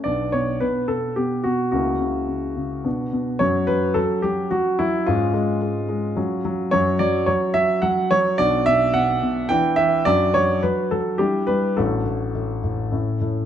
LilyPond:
<<
  \new Staff \with { instrumentName = "Grand piano" } { \time 3/4 \key b \minor \tempo 4 = 108 << { d''8 cis''8 b'8 a'8 g'8 fis'8 | fis'2~ fis'8 r8 | cis''8 b'8 a'8 g'8 fis'8 e'8 | eis'2~ eis'8 r8 |
\key d \major cis''8 d''8 cis''8 e''8 fis''8 cis''8 | d''8 e''8 fis''4 g''8 e''8 | d''8 cis''8 b'8 a'8 g'8 b'8 | a'2~ a'8 r8 | } \\ { <b d'>2. | <ais e'>2 <b d'>4 | cis'2. | cis'2 cis'4 |
<cis' fis'>2. | <d' fis'>2 <d' e'>4 | d'2 <d' e'>4 | <d' fis'>2 <cis' e'>4 | } >> }
  \new Staff \with { instrumentName = "Grand piano" } { \clef bass \time 3/4 \key b \minor <b,, b,>8 b,8 b,8 b,8 b,8 b,8 | <cis, cis>8 cis8 cis8 cis8 b,8 b,8 | <fis, fis>8 fis8 fis8 fis8 fis8 fis8 | <gis, gis>8 gis8 gis8 gis8 fis8 fis8 |
\key d \major <fis, fis>8 fis8 fis8 fis8 fis8 fis8 | <b,, b,>8 b,8 b,8 b,8 e8 e8 | <fis, fis>8 fis8 fis8 fis8 g8 g8 | <a,, a,>8 a,8 a,8 a,8 a,8 a,8 | }
>>